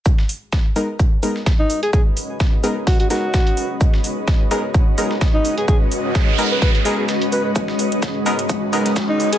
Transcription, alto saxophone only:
X:1
M:4/4
L:1/16
Q:"Swing 16ths" 1/4=128
K:G#m
V:1 name="Alto saxophone"
z12 z D2 G | G z6 z F F F6 | z12 z D2 G | G z6 B B z G G z2 B B |
z12 z D2 G |]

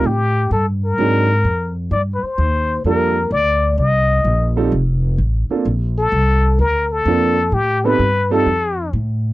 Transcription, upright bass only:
X:1
M:4/4
L:1/8
Q:"Swing" 1/4=128
K:Gm
V:1 name="Upright bass" clef=bass
A,,2 G,,2 _A,,2 F,,2 | G,, z E,,2 F,,2 D,,2 | C,,2 B,,,2 F,,,2 A,,, z | B,,,2 C,,2 D,,2 F,,2 |
A,,2 G,,2 F,,2 A,,2 |]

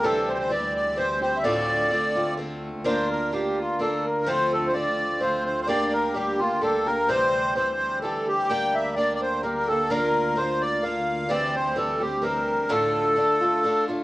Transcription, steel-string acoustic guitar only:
X:1
M:3/4
L:1/8
Q:"Swing" 1/4=128
K:Bblyd
V:1 name="Steel-string acoustic guitar"
[C,E,G,CG]2 [E,G,CG]2 [E,G,CG] [G,CG] | [D,,A,,D,A,CF]2 [D,A,CF] [D,A,CF] [D,A,CF]2 | [B,DFB]2 [B,DFB]2 [B,DFB]2 | [F,A,CF]2 [F,A,CF]2 [F,A,CF]2 |
[G,B,DG]2 [G,B,DG] [B,DG] [G,B,DG] [B,DG] | [C,E,G,CG]2 [E,G,CG]2 [E,G,CG]2 | [G,B,DG]2 [G,B,DG]2 [G,B,DG] [B,DG] | [B,DFB]2 [B,DFB]2 [B,DFB]2 |
[C,E,G,CG]2 [E,G,CG] [G,CG] [E,G,CG]2 | [D,,A,,D,A,DF]2 [D,A,DF] [D,A,DF] [D,A,DF] [D,A,DF] |]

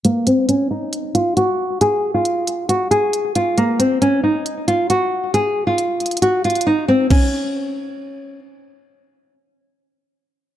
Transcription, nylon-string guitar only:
X:1
M:4/4
L:1/16
Q:1/4=136
K:Fphr
V:1 name="Nylon-string guitar"
B,2 C2 D2 E4 F2 G4 | A3 F4- F G2 A4 F2 | B,2 C2 D2 E4 F2 G4 | A3 F4- F G2 F2 E2 C2 |
D12 z4 | z16 |]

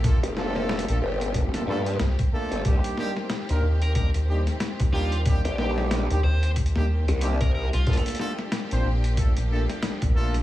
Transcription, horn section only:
X:1
M:4/4
L:1/16
Q:"Swing 16ths" 1/4=92
K:Cdor
V:1 name="Horn section"
[A,B,DFA] z [A,B,DFA]3 [A,B,DFA] z3 [A,B,DFA] [A,B,DFA] z3 [A,B,DFA]2 | [G,B,DEG]2 [G,B,DEG] z2 [B,DEB] z2 [G,B,DEG] z [G,B,DEG] z3 [G,B,DEG] z | [G,B,DEG] z [G,B,DEG]3 [G,B,DEG] z3 [G,B,DEG] z2 [G,B,DEG] z3 | [A,B,DFA]2 [A,B,DFA] z2 [B,CDFc] z2 [A,B,DFA] z [A,B,DFA] z3 [A,B,DFA] z |]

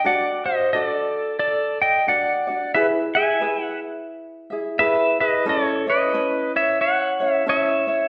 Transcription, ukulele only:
X:1
M:4/4
L:1/8
Q:"Swing" 1/4=89
K:Dphr
V:1 name="Ukulele"
[D^FAd] F [DFAd]3 z [DFAd] [DFd] | [=E^G=B=e] [EGe] [EGBe]3 [EGe] [EGBe] [EG] | [^C=EA^c] [CEc] [CEAc]3 [CEc] [CEAc] [CEc] |]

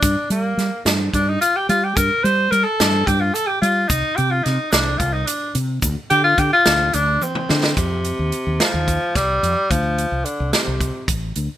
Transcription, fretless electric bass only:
X:1
M:7/8
L:1/16
Q:1/4=109
K:Dphr
V:1 name="Fretless electric bass" clef=bass
G,, z G,2 G, z G,,2 G,,2 z2 G,2 | G,, z G,2 G, z G,,2 G,,2 z2 G,2 | C,, z C,2 C, z C,,2 C,,2 z2 C,2 | D,, z D,2 D, z D,,2 D,,2 z2 D,2 |
F,,3 E,, z E,, z E,,2 z C,,2 F,, z | D,,3 C,, z C,, z C,,2 z A,,,2 D,, z |]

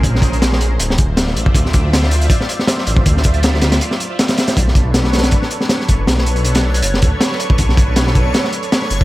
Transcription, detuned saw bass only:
X:1
M:4/4
L:1/8
Q:"Swing 16ths" 1/4=159
K:Bdor
V:1 name="Detuned saw bass" clef=bass
^A,,,4 D,,,3 =A,,, | D,,4 z3 A,,, | D,,4 z4 | B,,,4 z3 F,,, |
B,,,4 F,,, D,, z2 | B,,,4 z3 F,,, |]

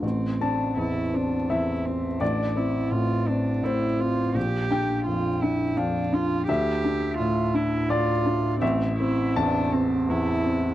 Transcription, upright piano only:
X:1
M:3/4
L:1/8
Q:1/4=84
K:Aphr
V:1 name="Upright piano"
z a3 e2 | d4 c2 | z g3 f2 | e4 d2 |
e2 a4 |]
V:2 name="Upright piano" clef=bass
A,,, C E,, C E,, C | A,,, C A,, C A,, C | B,,, D F,, D F,, D | D,, D A,, D A,, D |
A,,, C E,, C E,, C |]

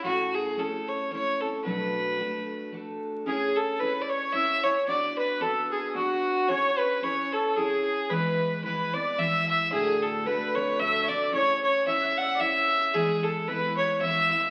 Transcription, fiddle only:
X:1
M:3/4
L:1/16
Q:"Swing" 1/4=112
K:C#phr
V:1 name="Fiddle"
F2 G2 A2 c2 c2 A2 | B8 z4 | G2 A2 B3/2 d/2 c2 e2 c2 | d2 B2 A2 G2 F4 |
c2 B2 c2 A2 G4 | B4 B2 d2 e2 e2 | G2 A2 B2 c2 e2 d2 | c2 c2 e2 f2 e4 |
G2 A2 B2 c2 e4 |]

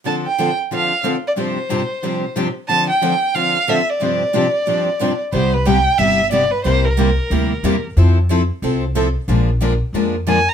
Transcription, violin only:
X:1
M:4/4
L:1/8
Q:"Swing" 1/4=182
K:C
V:1 name="Violin"
a g2 z f2 z d | c6 z2 | a g3 f2 e d- | d6- d z |
c B g2 e2 d B | c _B6 z | z8 | z6 _a _b |]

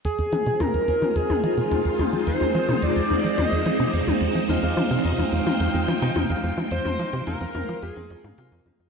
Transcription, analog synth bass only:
X:1
M:4/4
L:1/16
Q:1/4=108
K:Fm
V:1 name="Analog synth bass" clef=bass
F,, F,, F, C, F,, F,, F,, F, F,, F,, F, C, F,, F,, F,, F, | F,, F,, F, C, F,, F,, F,, F, F,, F,, F, C, F,, F,, F,, F, | F,, F,, F, C, F,, F,, F,, F, F,, F,, F, C, F,, F,, F,, F, | F,, F,, F, C, F,, F,, F,, F, F,, F,, F,, A,, C, F,, F,, F,, |]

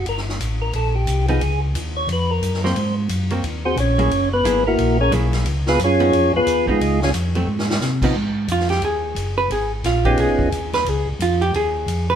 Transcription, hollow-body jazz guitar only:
X:1
M:4/4
L:1/8
Q:"Swing" 1/4=178
K:Dbmix
V:1 name="Hollow-body jazz guitar"
z6 z [F,CE] | z6 z [G,B,=C] | z3 [G,B,=C] z3 [G,B,_FA] | z2 [G,B,_FA] z3 [G,B,FA]2 |
z3 [F,CE] z3 [F,CE] | z3 [G,=A,=C] z3 [F,_CE] | z2 F =G A3 c | A z F =G A3 c |
A z F =G A3 c |]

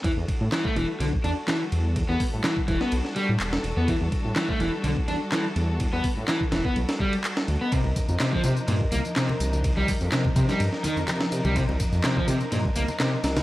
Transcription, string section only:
X:1
M:4/4
L:1/8
Q:"Swing 16ths" 1/4=125
K:C
V:1 name="String section"
[G,D^FA]8- | [G,D^FA]8- | [G,D^FA]8- | [G,D^FA]8 |
[F,D_E_B]8- | [F,D_E_B]8- | [F,D_E_B]8 |]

